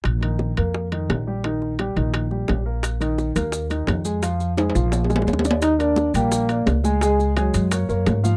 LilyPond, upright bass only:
\new Staff \with { instrumentName = "Upright bass" } { \clef bass \time 4/4 \key ees \major \tempo 4 = 172 bes,,4. f,4. bes,,4~ | bes,,4. bes,,4. bes,,4~ | bes,,4. ees,4. f,4~ | f,4. bes,,4. ees,4~ |
ees,4. bes,,4. des,4~ | des,4. ges,4 ges,8 aes,4 | }